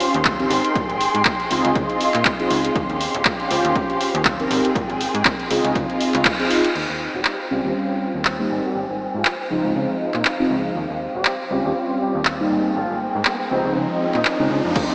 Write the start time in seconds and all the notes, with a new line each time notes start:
Already playing: C#4 G4 F5 C6
0.00 F4 G4 C5, open hi-hat
0.14 D#2, closed hi-hat
0.25 kick, clap, closed hi-hat
0.39 C4 D#4 G4 A#4, closed hi-hat
0.50 G#1 G#4 G5, open hi-hat
0.64 C4 D#4 G4 A#4, closed hi-hat
0.75 G#1, kick, closed hi-hat
0.90 G#1, closed hi-hat
1.01 open hi-hat
1.15 G#2, closed hi-hat
1.25 kick, clap, closed hi-hat
1.40 closed hi-hat
1.50 C#2 C4 D#4 F4 G#4 D#5, open hi-hat
1.65 C#2, closed hi-hat
1.75 C#3, kick, closed hi-hat
1.90 closed hi-hat
2.00 C4 D#4 F4 G#4, open hi-hat
2.14 A#2, clap, closed hi-hat
2.25 kick, clap, closed hi-hat
2.39 C4 D#4 F4 G#4, closed hi-hat
2.50 C#2, open hi-hat
2.64 C4 D#4 F4 G#4, closed hi-hat
2.76 D#2 C#4 G4 F5, kick, closed hi-hat
2.90 D#2, closed hi-hat
3.01 open hi-hat
3.15 D#1, closed hi-hat
3.25 kick, clap, closed hi-hat
3.40 closed hi-hat
3.50 C#2 C#4 F4 G4 C5, open hi-hat
3.65 D#2, closed hi-hat
3.75 kick, closed hi-hat
3.90 closed hi-hat
4.00 C#4 F4 G4 C5, open hi-hat
4.15 D#2, closed hi-hat
4.25 kick, clap, closed hi-hat
4.39 C4 D#4 G4 A#4, closed hi-hat
4.51 G#1 G#4 G5, open hi-hat
4.64 C4 D#4 G4 A#4, closed hi-hat
4.75 G#1, kick, closed hi-hat
4.89 G#1, closed hi-hat
5.01 open hi-hat
5.14 G#2, closed hi-hat
5.25 kick, clap, closed hi-hat
5.40 closed hi-hat
5.50 C#2 C4 D#4 F4 G#4 D#5, open hi-hat
5.64 C#2, closed hi-hat
5.75 C#3, kick, closed hi-hat
5.90 closed hi-hat
6.00 C4 D#4 F4 G#4, open hi-hat
6.14 C#2, clap, closed hi-hat
6.25 kick, clap, closed hi-hat
6.39 C4 D#4 F4 G#4, closed hi-hat
6.50 open hi-hat
6.64 C4 D#4 F4 G#4, closed hi-hat
6.75 D#2 F4 C5 G5, crash
6.90 D#2
7.14 D#1 G3 G4
7.25 clap
7.50 C#2 G3 C4 C#4 F4 G4
7.65 D#2 G3 G4
8.00 G3 C4 C#4 F4
8.14 D#2
8.25 clap
8.39 G3 A#3 C4 D#4
8.50 G#1 G5 G#5
8.64 G3 A#3 C4 D#4 G4
8.76 G#1
8.90 G#1
9.15 G#2 F3 F4
9.25 F3 F4, clap
9.50 C#2 F3 G#3 C4 D#4 F5
9.65 C#2
9.76 C#3
10.00 F3 G#3 C4 D#4
10.14 A#2, clap
10.25 clap
10.39 F3 G#3 C4 D#4
10.51 C#2
10.64 F3 G#3 C4 D#4
10.75 D#2 G4 C5, riser
10.90 D#2
11.14 D#1 G3 G4
11.25 clap
11.50 C#2 G3 C4 C#4 F4 G4
11.65 D#2 G3 G4
12.00 G3 C4 C#4 F4 G4
12.15 D#2
12.25 clap
12.39 G3 A#3 C4 D#4
12.50 G#1 C4 G#4 G5
12.64 G3 A#3 C4 D#4
12.75 G#1 F3 F4
12.90 G#1
13.15 G#2
13.25 clap
13.50 C#2 C3 F3 G#3 C4 D#4 F4 D#5
13.65 C#2
13.76 C#3
14.00 F3 G#3 C4 D#4
14.14 A#2 D#3 D#4, clap
14.25 clap
14.39 C#3 F3 G#3 C4 D#4
14.51 C#3
14.64 F2 F3 G#3 C4 D#4
14.75 D#2 C#3 F3 G3 C4 G4 C5 F5, kick, closed hi-hat, crash
14.90 D#2, closed hi-hat